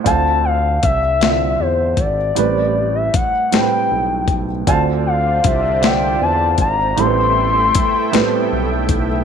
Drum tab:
HH |x-xx-x|x-xx-x|x-xx-x|x-xx-x|
SD |---o--|---o--|---o--|---o--|
BD |o-o--o|--o--o|o-o--o|--o--o|